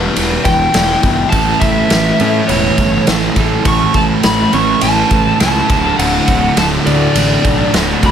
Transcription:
0.00 0.46 E2 medium
0.00 0.73 E2 medium
0.00 0.74 B2 medium
0.00 0.46 E3 medium
0.00 0.76 E3 medium
0.00 0.74 G3 medium
0.00 0.16 B3 medium
0.00 1.03 E4 medium
0.16 0.36 E1 medium
0.16 1.33 B3 medium
0.16 ride medium
0.45 0.65 E1 medium
0.45 2.78 E3 medium
0.45 1.29 G5 medium
0.45 kick medium
0.45 ride medium
0.74 0.94 E1 medium
0.74 1.31 E2 medium
0.74 1.31 B2 medium
0.74 1.33 E3 medium
0.74 1.33 G3 medium
0.74 snare loud
0.74 ride medium
1.03 1.23 G1 medium
1.03 1.91 E4 medium
1.03 kick medium
1.03 ride medium
1.30 1.52 A1 medium
1.30 2.21 A2 medium
1.30 2.20 E3 medium
1.30 1.61 A5 loud
1.30 kick loud
1.30 ride medium
1.34 2.79 A2 medium
1.34 2.19 A3 medium
1.60 1.82 A1 medium
1.60 2.45 E5 medium
1.60 kick medium
1.60 ride medium
1.90 2.11 A1 medium
1.90 2.48 E4 medium
1.90 snare loud
1.90 ride medium
2.19 2.40 A2 medium
2.19 3.06 A2 medium
2.19 3.06 E3 medium
2.19 3.09 A3 medium
2.19 3.07 C#4 medium
2.19 ride medium
2.48 2.69 E1 medium
2.48 3.95 E4 medium
2.48 3.03 C#5 medium
2.48 ride medium
2.78 2.98 G1 medium
2.78 5.11 A3 medium
2.78 kick medium
2.78 ride medium
3.07 3.28 A1 medium
3.07 3.64 A2 medium
3.07 3.65 E3 medium
3.07 3.67 A3 medium
3.07 4.52 C#4 medium
3.07 snare loud
3.07 ride medium
3.36 3.56 A1 medium
3.36 3.64 A2 medium
3.36 3.65 E3 medium
3.36 3.67 A3 medium
3.36 6.87 A4 medium
3.36 kick medium
3.36 ride medium
3.65 3.85 A1 medium
3.65 4.51 A2 medium
3.65 5.12 A2 medium
3.65 4.52 E3 medium
3.65 4.52 A3 medium
3.65 3.97 C#6 medium
3.65 kick loud
3.65 ride medium
3.94 4.14 A1 medium
3.94 4.03 A5 medium
3.94 kick medium
3.94 ride medium
4.23 4.44 A1 medium
4.23 4.82 E4 medium
4.23 4.52 B5 loud
4.23 snare loud
4.23 ride medium
4.53 4.73 A1 medium
4.53 5.39 A2 medium
4.53 5.40 E3 medium
4.53 5.42 A3 medium
4.53 5.40 C#4 medium
4.53 4.81 C#6 medium
4.53 ride medium
4.81 5.02 A1 medium
4.81 5.70 E4 medium
4.81 5.37 A5 medium
4.81 ride medium
5.11 5.31 A1 medium
5.11 6.58 A3 medium
5.11 kick medium
5.11 ride medium
5.40 5.61 C#2 medium
5.40 5.68 A2 medium
5.40 5.68 E3 medium
5.40 5.71 A3 medium
5.40 5.70 C#4 medium
5.40 5.95 A5 medium
5.40 snare loud
5.40 ride medium
5.69 5.90 D1 medium
5.69 6.56 D2 medium
5.69 6.00 D2 medium
5.69 6.56 A2 medium
5.69 6.59 D3 medium
5.69 kick loud
5.69 ride medium
5.98 6.18 D1 medium
5.98 8.12 D2 medium
5.98 6.53 F#5 medium
5.98 ride medium
6.28 6.48 D1 medium
6.28 kick medium
6.28 ride medium
6.57 6.77 D1 medium
6.57 7.46 D2 medium
6.57 7.44 A2 medium
6.57 7.44 D3 medium
6.57 7.16 A3 medium
6.57 6.66 A5 medium
6.57 snare loud
6.57 ride medium
6.86 7.06 D2 medium
6.86 7.74 D3 medium
6.86 7.70 D5 medium
6.86 ride medium
7.15 7.35 A1 medium
7.15 8.12 A3 medium
7.15 ride medium
7.44 7.65 B1 medium
7.44 8.02 D2 medium
7.44 8.12 A2 medium
7.44 8.02 A2 medium
7.44 8.04 D3 medium
7.44 kick medium
7.44 ride medium
7.73 7.93 D1 medium
7.73 8.03 D2 medium
7.73 8.02 A2 medium
7.73 8.12 D3 medium
7.73 8.05 D3 medium
7.73 snare loud
7.73 ride medium
8.02 8.12 D1 medium
8.02 8.12 D2 medium
8.02 8.12 A2 loud
8.02 8.12 D3 medium
8.02 8.12 F#4 medium
8.02 8.12 B5 medium
8.02 kick medium
8.02 ride medium

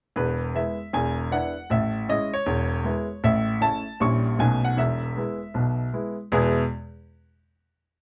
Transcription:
0.16 0.49 E1 medium
0.16 0.49 E2 medium
0.16 0.55 B4 medium
0.55 0.76 G#3 soft
0.55 0.76 B3 soft
0.55 0.76 E4 soft
0.55 0.94 E5 medium
0.93 1.26 E1 medium
0.93 1.26 E2 medium
0.93 1.32 G#5 medium
1.31 1.53 B3 soft
1.31 1.53 D4 soft
1.31 1.53 E4 soft
1.31 1.70 F#5 medium
1.70 2.03 A1 medium
1.70 2.03 A2 medium
1.70 2.09 E5 medium
2.09 2.30 G#3 soft
2.09 2.30 C#4 soft
2.09 2.30 E4 soft
2.09 2.34 D#5 medium
2.34 3.24 C#5 medium
2.46 2.79 E1 medium
2.46 2.79 E2 medium
2.84 3.06 G#3 soft
2.84 3.06 B3 soft
2.84 3.06 E4 soft
3.24 3.56 A1 medium
3.24 3.56 A2 medium
3.24 3.62 E5 medium
3.61 3.83 A3 soft
3.61 3.83 C#4 soft
3.61 3.83 E4 soft
3.61 4.01 A5 medium
4.00 4.33 A#1 medium
4.00 4.33 A#2 medium
4.00 4.22 G3 soft
4.00 4.22 C#4 soft
4.00 4.22 E4 soft
4.00 4.40 C#6 medium
4.39 4.72 B1 medium
4.39 4.72 B2 medium
4.39 4.60 A3 soft
4.39 4.61 C#4 soft
4.39 4.61 D#4 soft
4.39 4.64 G#5 medium
4.65 4.78 F#5 medium
4.77 5.10 E1 medium
4.77 5.10 E2 medium
4.77 5.93 E5 medium
5.16 5.38 G#3 soft
5.16 5.38 B3 soft
5.16 5.38 E4 soft
5.54 5.87 B1 medium
5.54 5.87 B2 soft
5.93 6.15 G#3 soft
5.93 6.15 B3 soft
5.93 6.15 E4 soft
6.32 6.57 E2 medium
6.32 6.57 B2 medium
6.32 6.57 G#3 medium
6.32 6.58 B3 medium
6.32 6.58 E4 medium
6.32 6.58 G#4 medium

